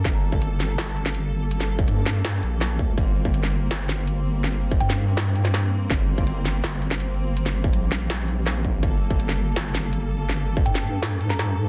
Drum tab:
HH |x---x---x-x-x---|x---x---x-x-x---|x---x---x-x-x---|x---x---x-x-x---|
SD |o-----o-o--o----|-o----o-o---o---|-----o--o-o-----|o----o--o--oo---|
BD |o--o------------|---o----------o-|o--o------------|---o------------|

HH |x---x---x-x-x---|x---x-x-x-x-x---|x---x---x-x-x---|x---x---x-x-x---|
SD |o-----o-o--o----|-o----o-o---o---|-----o--o-o-----|o----o--o--oo---|
BD |o--o------------|---o----------o-|o--o------------|---o------------|